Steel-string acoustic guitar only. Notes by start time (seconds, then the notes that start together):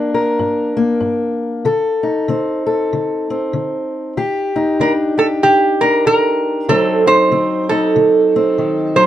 Already playing: G2 A#3 D4 A#4
0.14 A#4
0.39 G2
0.77 A#3
1.00 G2
1.65 D3 A4
2.03 D#4
2.28 D3 C4
2.67 A4
2.93 D3
3.30 C4
3.53 D3
4.17 D#3 G4
4.56 D#4
4.80 D#3 D4
5.18 G4
5.43 D#3
5.82 D4
6.06 D#3
6.69 D3 F#3 C4 D#4
7.07 D#4
7.31 D3 C4
7.71 D#4
7.96 D3
8.36 C4
8.58 D#3
8.96 F#3